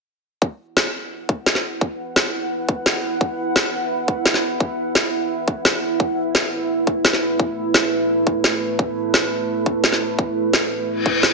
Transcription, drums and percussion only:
0, 0, Header, 1, 2, 480
1, 0, Start_track
1, 0, Tempo, 348837
1, 575, Time_signature, 4, 2, 24, 8
1, 15594, End_track
2, 0, Start_track
2, 0, Title_t, "Drums"
2, 575, Note_on_c, 9, 36, 112
2, 713, Note_off_c, 9, 36, 0
2, 1055, Note_on_c, 9, 38, 119
2, 1193, Note_off_c, 9, 38, 0
2, 1775, Note_on_c, 9, 36, 102
2, 1913, Note_off_c, 9, 36, 0
2, 2015, Note_on_c, 9, 38, 106
2, 2136, Note_off_c, 9, 38, 0
2, 2136, Note_on_c, 9, 38, 36
2, 2273, Note_off_c, 9, 38, 0
2, 2496, Note_on_c, 9, 36, 118
2, 2633, Note_off_c, 9, 36, 0
2, 2975, Note_on_c, 9, 38, 117
2, 3113, Note_off_c, 9, 38, 0
2, 3696, Note_on_c, 9, 36, 104
2, 3833, Note_off_c, 9, 36, 0
2, 3936, Note_on_c, 9, 38, 113
2, 4073, Note_off_c, 9, 38, 0
2, 4416, Note_on_c, 9, 36, 118
2, 4553, Note_off_c, 9, 36, 0
2, 4896, Note_on_c, 9, 38, 124
2, 5033, Note_off_c, 9, 38, 0
2, 5615, Note_on_c, 9, 36, 103
2, 5753, Note_off_c, 9, 36, 0
2, 5855, Note_on_c, 9, 38, 117
2, 5975, Note_off_c, 9, 38, 0
2, 5975, Note_on_c, 9, 38, 38
2, 6113, Note_off_c, 9, 38, 0
2, 6335, Note_on_c, 9, 36, 118
2, 6473, Note_off_c, 9, 36, 0
2, 6815, Note_on_c, 9, 38, 115
2, 6953, Note_off_c, 9, 38, 0
2, 7535, Note_on_c, 9, 36, 104
2, 7673, Note_off_c, 9, 36, 0
2, 7775, Note_on_c, 9, 38, 112
2, 7913, Note_off_c, 9, 38, 0
2, 8255, Note_on_c, 9, 36, 114
2, 8393, Note_off_c, 9, 36, 0
2, 8735, Note_on_c, 9, 38, 116
2, 8873, Note_off_c, 9, 38, 0
2, 9455, Note_on_c, 9, 36, 100
2, 9593, Note_off_c, 9, 36, 0
2, 9696, Note_on_c, 9, 38, 113
2, 9816, Note_off_c, 9, 38, 0
2, 9816, Note_on_c, 9, 38, 35
2, 9953, Note_off_c, 9, 38, 0
2, 10176, Note_on_c, 9, 36, 113
2, 10313, Note_off_c, 9, 36, 0
2, 10656, Note_on_c, 9, 38, 110
2, 10793, Note_off_c, 9, 38, 0
2, 11376, Note_on_c, 9, 36, 96
2, 11513, Note_off_c, 9, 36, 0
2, 11615, Note_on_c, 9, 38, 103
2, 11753, Note_off_c, 9, 38, 0
2, 12096, Note_on_c, 9, 36, 109
2, 12233, Note_off_c, 9, 36, 0
2, 12576, Note_on_c, 9, 38, 111
2, 12713, Note_off_c, 9, 38, 0
2, 13296, Note_on_c, 9, 36, 92
2, 13433, Note_off_c, 9, 36, 0
2, 13536, Note_on_c, 9, 38, 104
2, 13656, Note_off_c, 9, 38, 0
2, 13656, Note_on_c, 9, 38, 35
2, 13794, Note_off_c, 9, 38, 0
2, 14016, Note_on_c, 9, 36, 108
2, 14153, Note_off_c, 9, 36, 0
2, 14496, Note_on_c, 9, 38, 120
2, 14633, Note_off_c, 9, 38, 0
2, 15215, Note_on_c, 9, 36, 98
2, 15353, Note_off_c, 9, 36, 0
2, 15455, Note_on_c, 9, 38, 107
2, 15593, Note_off_c, 9, 38, 0
2, 15594, End_track
0, 0, End_of_file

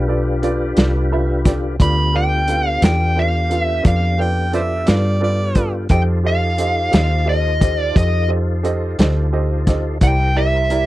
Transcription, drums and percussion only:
0, 0, Header, 1, 2, 480
1, 0, Start_track
1, 0, Tempo, 684932
1, 1259, Time_signature, 12, 3, 24, 8
1, 7611, End_track
2, 0, Start_track
2, 0, Title_t, "Drums"
2, 301, Note_on_c, 9, 42, 57
2, 371, Note_off_c, 9, 42, 0
2, 537, Note_on_c, 9, 42, 71
2, 547, Note_on_c, 9, 38, 89
2, 607, Note_off_c, 9, 42, 0
2, 617, Note_off_c, 9, 38, 0
2, 1018, Note_on_c, 9, 42, 62
2, 1019, Note_on_c, 9, 36, 82
2, 1029, Note_on_c, 9, 38, 32
2, 1088, Note_off_c, 9, 42, 0
2, 1089, Note_off_c, 9, 36, 0
2, 1099, Note_off_c, 9, 38, 0
2, 1260, Note_on_c, 9, 36, 99
2, 1261, Note_on_c, 9, 42, 72
2, 1330, Note_off_c, 9, 36, 0
2, 1332, Note_off_c, 9, 42, 0
2, 1735, Note_on_c, 9, 42, 61
2, 1805, Note_off_c, 9, 42, 0
2, 1977, Note_on_c, 9, 42, 73
2, 1988, Note_on_c, 9, 38, 98
2, 2047, Note_off_c, 9, 42, 0
2, 2058, Note_off_c, 9, 38, 0
2, 2458, Note_on_c, 9, 42, 57
2, 2528, Note_off_c, 9, 42, 0
2, 2695, Note_on_c, 9, 42, 71
2, 2698, Note_on_c, 9, 36, 94
2, 2765, Note_off_c, 9, 42, 0
2, 2768, Note_off_c, 9, 36, 0
2, 3176, Note_on_c, 9, 42, 50
2, 3246, Note_off_c, 9, 42, 0
2, 3410, Note_on_c, 9, 42, 71
2, 3420, Note_on_c, 9, 38, 104
2, 3480, Note_off_c, 9, 42, 0
2, 3491, Note_off_c, 9, 38, 0
2, 3889, Note_on_c, 9, 42, 57
2, 3893, Note_on_c, 9, 36, 79
2, 3959, Note_off_c, 9, 42, 0
2, 3963, Note_off_c, 9, 36, 0
2, 4129, Note_on_c, 9, 42, 66
2, 4133, Note_on_c, 9, 36, 91
2, 4199, Note_off_c, 9, 42, 0
2, 4203, Note_off_c, 9, 36, 0
2, 4612, Note_on_c, 9, 42, 61
2, 4682, Note_off_c, 9, 42, 0
2, 4854, Note_on_c, 9, 42, 77
2, 4865, Note_on_c, 9, 38, 97
2, 4924, Note_off_c, 9, 42, 0
2, 4935, Note_off_c, 9, 38, 0
2, 5335, Note_on_c, 9, 36, 80
2, 5337, Note_on_c, 9, 42, 67
2, 5405, Note_off_c, 9, 36, 0
2, 5407, Note_off_c, 9, 42, 0
2, 5577, Note_on_c, 9, 36, 109
2, 5580, Note_on_c, 9, 42, 73
2, 5647, Note_off_c, 9, 36, 0
2, 5650, Note_off_c, 9, 42, 0
2, 6059, Note_on_c, 9, 42, 55
2, 6129, Note_off_c, 9, 42, 0
2, 6298, Note_on_c, 9, 42, 72
2, 6309, Note_on_c, 9, 38, 97
2, 6368, Note_off_c, 9, 42, 0
2, 6379, Note_off_c, 9, 38, 0
2, 6776, Note_on_c, 9, 42, 57
2, 6777, Note_on_c, 9, 36, 78
2, 6787, Note_on_c, 9, 38, 31
2, 6846, Note_off_c, 9, 42, 0
2, 6847, Note_off_c, 9, 36, 0
2, 6857, Note_off_c, 9, 38, 0
2, 7015, Note_on_c, 9, 42, 67
2, 7018, Note_on_c, 9, 36, 88
2, 7085, Note_off_c, 9, 42, 0
2, 7088, Note_off_c, 9, 36, 0
2, 7499, Note_on_c, 9, 42, 57
2, 7569, Note_off_c, 9, 42, 0
2, 7611, End_track
0, 0, End_of_file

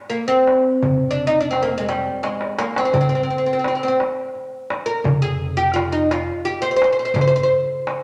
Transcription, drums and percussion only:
0, 0, Header, 1, 2, 480
1, 0, Start_track
1, 0, Tempo, 703400
1, 562, Time_signature, 6, 3, 24, 8
1, 5482, End_track
2, 0, Start_track
2, 0, Title_t, "Darbuka"
2, 80, Note_on_c, 9, 62, 24
2, 148, Note_off_c, 9, 62, 0
2, 323, Note_on_c, 9, 63, 60
2, 392, Note_off_c, 9, 63, 0
2, 563, Note_on_c, 9, 64, 88
2, 631, Note_off_c, 9, 64, 0
2, 1042, Note_on_c, 9, 63, 56
2, 1111, Note_off_c, 9, 63, 0
2, 1162, Note_on_c, 9, 62, 26
2, 1230, Note_off_c, 9, 62, 0
2, 1288, Note_on_c, 9, 63, 54
2, 1356, Note_off_c, 9, 63, 0
2, 1527, Note_on_c, 9, 63, 60
2, 1595, Note_off_c, 9, 63, 0
2, 1643, Note_on_c, 9, 62, 61
2, 1712, Note_off_c, 9, 62, 0
2, 1764, Note_on_c, 9, 63, 74
2, 1832, Note_off_c, 9, 63, 0
2, 1886, Note_on_c, 9, 62, 92
2, 1954, Note_off_c, 9, 62, 0
2, 2005, Note_on_c, 9, 64, 98
2, 2073, Note_off_c, 9, 64, 0
2, 2487, Note_on_c, 9, 63, 64
2, 2555, Note_off_c, 9, 63, 0
2, 2610, Note_on_c, 9, 62, 26
2, 2678, Note_off_c, 9, 62, 0
2, 2730, Note_on_c, 9, 63, 57
2, 2798, Note_off_c, 9, 63, 0
2, 2969, Note_on_c, 9, 62, 29
2, 3037, Note_off_c, 9, 62, 0
2, 3210, Note_on_c, 9, 63, 67
2, 3278, Note_off_c, 9, 63, 0
2, 3447, Note_on_c, 9, 64, 101
2, 3515, Note_off_c, 9, 64, 0
2, 3930, Note_on_c, 9, 63, 63
2, 3999, Note_off_c, 9, 63, 0
2, 4054, Note_on_c, 9, 62, 24
2, 4122, Note_off_c, 9, 62, 0
2, 4171, Note_on_c, 9, 63, 64
2, 4239, Note_off_c, 9, 63, 0
2, 4411, Note_on_c, 9, 62, 26
2, 4479, Note_off_c, 9, 62, 0
2, 4652, Note_on_c, 9, 63, 71
2, 4720, Note_off_c, 9, 63, 0
2, 4886, Note_on_c, 9, 64, 107
2, 4954, Note_off_c, 9, 64, 0
2, 5371, Note_on_c, 9, 63, 62
2, 5439, Note_off_c, 9, 63, 0
2, 5482, End_track
0, 0, End_of_file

